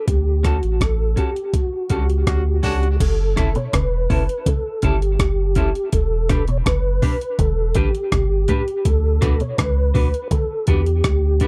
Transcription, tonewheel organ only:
0, 0, Header, 1, 2, 480
1, 0, Start_track
1, 0, Tempo, 731707
1, 48, Time_signature, 4, 2, 24, 8
1, 7527, End_track
2, 0, Start_track
2, 0, Title_t, "Tonewheel organ"
2, 0, Program_c, 0, 16
2, 57, Note_on_c, 0, 67, 87
2, 299, Note_on_c, 0, 66, 77
2, 300, Note_off_c, 0, 67, 0
2, 540, Note_on_c, 0, 69, 80
2, 541, Note_off_c, 0, 66, 0
2, 779, Note_on_c, 0, 67, 76
2, 781, Note_off_c, 0, 69, 0
2, 1018, Note_on_c, 0, 66, 73
2, 1021, Note_off_c, 0, 67, 0
2, 1253, Note_on_c, 0, 67, 71
2, 1707, Note_off_c, 0, 66, 0
2, 1945, Note_off_c, 0, 67, 0
2, 1976, Note_on_c, 0, 69, 81
2, 2341, Note_on_c, 0, 73, 89
2, 2349, Note_off_c, 0, 69, 0
2, 2455, Note_off_c, 0, 73, 0
2, 2458, Note_on_c, 0, 71, 90
2, 2937, Note_on_c, 0, 69, 91
2, 2947, Note_off_c, 0, 71, 0
2, 3179, Note_on_c, 0, 67, 77
2, 3180, Note_off_c, 0, 69, 0
2, 3867, Note_off_c, 0, 67, 0
2, 3897, Note_on_c, 0, 69, 91
2, 4233, Note_off_c, 0, 69, 0
2, 4265, Note_on_c, 0, 73, 99
2, 4314, Note_off_c, 0, 73, 0
2, 4376, Note_on_c, 0, 71, 92
2, 4853, Note_on_c, 0, 69, 95
2, 4866, Note_off_c, 0, 71, 0
2, 5094, Note_on_c, 0, 67, 93
2, 5098, Note_off_c, 0, 69, 0
2, 5811, Note_on_c, 0, 69, 100
2, 5832, Note_off_c, 0, 67, 0
2, 6176, Note_on_c, 0, 73, 95
2, 6186, Note_off_c, 0, 69, 0
2, 6281, Note_off_c, 0, 73, 0
2, 6289, Note_on_c, 0, 71, 103
2, 6742, Note_off_c, 0, 71, 0
2, 6774, Note_on_c, 0, 69, 96
2, 6994, Note_off_c, 0, 69, 0
2, 7013, Note_on_c, 0, 67, 103
2, 7527, Note_off_c, 0, 67, 0
2, 7527, End_track
0, 0, End_of_file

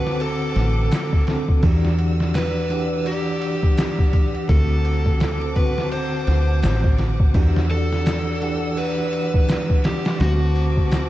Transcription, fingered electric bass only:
0, 0, Header, 1, 2, 480
1, 0, Start_track
1, 0, Key_signature, 1, "minor"
1, 0, Tempo, 714286
1, 1098, Time_signature, 4, 2, 24, 8
1, 7454, End_track
2, 0, Start_track
2, 0, Title_t, "Fingered electric bass"
2, 0, Program_c, 0, 33
2, 0, Note_on_c, 0, 38, 91
2, 373, Note_off_c, 0, 38, 0
2, 377, Note_on_c, 0, 33, 103
2, 594, Note_off_c, 0, 33, 0
2, 1097, Note_on_c, 0, 40, 97
2, 2999, Note_off_c, 0, 40, 0
2, 3019, Note_on_c, 0, 38, 91
2, 4215, Note_off_c, 0, 38, 0
2, 4219, Note_on_c, 0, 38, 91
2, 4461, Note_on_c, 0, 33, 85
2, 4471, Note_off_c, 0, 38, 0
2, 4921, Note_off_c, 0, 33, 0
2, 4936, Note_on_c, 0, 40, 95
2, 6838, Note_off_c, 0, 40, 0
2, 6860, Note_on_c, 0, 38, 94
2, 7454, Note_off_c, 0, 38, 0
2, 7454, End_track
0, 0, End_of_file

